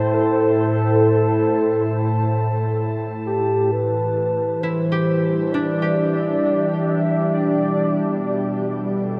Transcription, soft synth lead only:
0.00 0.14 C5 loud
0.13 2.84 A4 loud
3.26 3.72 G4 medium
3.71 4.62 B4 medium
4.60 5.53 C5 medium
5.51 6.91 D5 loud
6.89 7.33 E5 loud
7.34 8.67 D5 loud

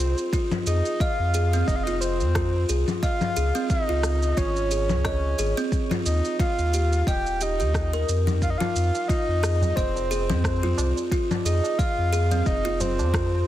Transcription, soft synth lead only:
0.00 0.18 C5 medium
0.66 1.02 D#5 loud
1.01 1.67 F5 loud
1.67 1.77 D#5 loud
1.76 1.85 F5 medium
1.83 2.00 D#5 loud
2.01 2.65 C5 medium
3.02 3.66 F5 loud
3.70 4.39 D#5 loud
4.37 5.05 C#5 loud
5.06 5.54 C#5 medium
6.05 6.37 D#5 medium
6.40 7.03 F5 loud
7.08 7.44 G5 loud
7.42 8.09 D#5 medium
8.42 8.52 F5 loud
8.50 8.59 D#5 medium
8.58 9.08 F5 loud
9.08 9.77 D#5 loud
9.76 10.43 C5 loud
10.44 10.93 C5 medium
11.45 11.80 D#5 loud
11.78 12.46 F5 loud
12.47 12.82 D#5 loud
12.81 13.47 C5 medium

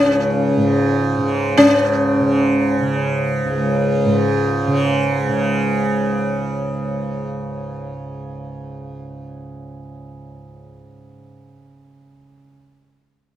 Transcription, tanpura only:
0.00 3.44 C#2 medium
0.00 0.57 G#2 medium
0.00 1.19 C#3 medium
0.57 1.56 G#2 medium
1.19 2.21 C#3 medium
1.56 4.06 G#2 medium
2.21 2.82 C#3 medium
2.82 4.67 C#3 medium
3.45 10.60 C#2 medium
4.06 11.21 G#2 medium
4.68 5.28 C#3 medium
5.28 12.43 C#3 medium

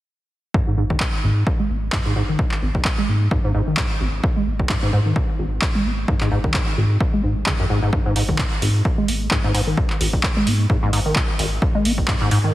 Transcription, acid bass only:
0.54 0.62 G#2 medium
0.67 0.76 G#2 loud
0.77 0.85 G#2 loud
0.90 1.02 D#3 medium
1.01 1.05 G#2 medium
1.24 1.31 G#1 medium
1.59 1.71 G#3 medium
1.70 1.77 B3 medium
1.93 2.00 G#2 medium
2.06 2.14 G#2 loud
2.16 2.23 G#2 loud
2.29 2.41 D#3 medium
2.39 2.43 G#2 medium
2.62 2.69 G#1 medium
2.98 3.10 G#3 medium
3.08 3.15 B3 medium
3.31 3.38 G#2 medium
3.44 3.53 G#2 loud
3.54 3.62 G#2 loud
3.67 3.79 D#3 medium
3.77 3.82 G#2 medium
4.01 4.08 G#1 medium
4.36 4.48 G#3 medium
4.47 4.54 B3 medium
4.70 4.77 G#2 medium
4.83 4.91 G#2 loud
4.93 5.00 G#2 loud
5.06 5.18 D#3 medium
5.16 5.20 G#2 medium
5.39 5.46 G#1 medium
5.75 5.87 G#3 medium
5.85 5.92 B3 medium
6.08 6.15 G#2 medium
6.21 6.30 G#2 loud
6.31 6.38 G#2 loud
6.44 6.56 D#3 medium
6.55 6.59 G#2 medium
6.78 6.85 G#1 medium
7.13 7.22 G#3 medium
7.24 7.34 G#2 medium
7.47 7.54 C#3 medium
7.59 7.65 F#2 medium
7.70 7.80 G#2 loud
7.83 7.91 G#2 loud
7.93 8.00 G#2 medium
8.06 8.14 G#2 loud
8.16 8.23 G#2 medium
8.29 8.40 D#3 medium
8.39 8.43 G#2 medium
8.62 8.69 G#1 medium
8.98 9.10 G#3 medium
9.08 9.15 B3 medium
9.31 9.38 G#2 medium
9.44 9.53 G#2 loud
9.54 9.61 G#2 loud
9.67 9.79 D#3 medium
9.77 9.82 G#2 medium
10.00 10.08 G#1 medium
10.36 10.48 G#3 medium
10.47 10.54 B3 medium
10.70 10.77 G#2 medium
10.83 10.91 G#2 loud
10.93 11.00 G#2 loud
11.06 11.17 D#3 medium
11.16 11.20 G#2 medium
11.39 11.46 G#1 medium
11.75 11.87 G#3 medium
11.85 11.92 B3 medium
12.08 12.15 G#2 medium
12.21 12.30 G#2 loud
12.31 12.38 G#2 loud
12.44 12.54 D#3 medium

